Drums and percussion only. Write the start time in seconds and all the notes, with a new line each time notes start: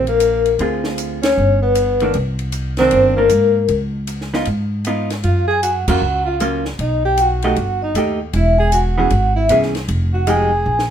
0.07 ride
0.20 hi-hat pedal, ride
0.46 ride
0.59 ride
0.84 snare
0.98 hi-hat pedal, ride
1.23 snare, ride
1.75 hi-hat pedal, ride
2.00 ride
2.14 ride
2.39 ride
2.52 hi-hat pedal, ride
2.77 snare, ride
2.91 ride
3.29 hi-hat pedal, ride
3.68 ride
4.07 hi-hat pedal, ride
4.21 snare
4.34 snare
4.45 ride
4.85 hi-hat pedal, ride
5.10 snare, ride
5.24 ride
5.63 hi-hat pedal, ride
5.88 kick, crash
6.40 hi-hat pedal, ride
6.65 snare
6.79 ride
7.17 hi-hat pedal, ride
7.42 ride
7.56 ride
7.95 hi-hat pedal, ride
8.33 ride
8.72 hi-hat pedal, ride
9.10 ride
9.49 hi-hat pedal, ride
9.63 snare
9.75 snare, ride
9.88 ride
10.27 hi-hat pedal, ride
10.79 snare